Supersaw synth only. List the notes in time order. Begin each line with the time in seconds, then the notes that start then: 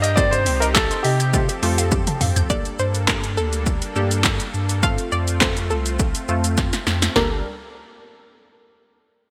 Already playing: A#3 D4 G4
0.17 C3 C4 D#4
1.33 F3 C4 A4
4.83 A3 C4 F4
7.16 G3 D4 A4 A#4